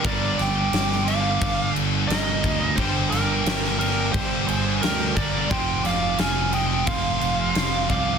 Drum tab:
CC |x-x-x-x-x-x-x-x-|x-x-x-x-x-x-x-x-|x-x-x-x-x-x-x-x-|
SD |--o-oo------o---|--o-oo------o---|--o-o-------o---|
BD |o-------o-----o-|o-------o-----o-|o-------o-----o-|